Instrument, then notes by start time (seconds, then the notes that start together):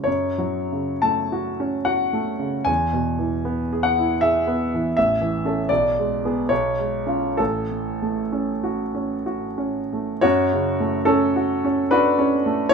grand piano
0.04 F#2 C#5
0.38 F#3
0.72 C#3
1.02 A3 A5
1.32 F#4
1.60 C#4
1.85 F#4 F#5
2.13 A3
2.39 C#3
2.65 E2 G#5
2.93 B2
3.19 E3
3.45 B3
3.73 G#4
3.83 F#5
3.98 E4
4.21 G#4 E5
4.47 B3
4.74 E3
4.97 A1 E5
5.21 E3
5.45 C#4 A4
5.69 B1 D5
5.99 G#3
6.25 B3 G#4
6.49 B1 C#5
6.79 G#3
7.07 C#4 F4
7.37 A1 A4
7.71 A2
8.02 A3
8.33 C#4
8.63 F#4
8.95 C#4
9.26 F#4
9.58 C#4
9.93 A3
10.21 F#2 F#4 C#5
10.53 C#3
10.80 A3
11.05 C#4 A4
11.36 F#4
11.64 C#4
11.91 D4 F#4 B4
12.19 C#4
12.46 A3
12.69 C#5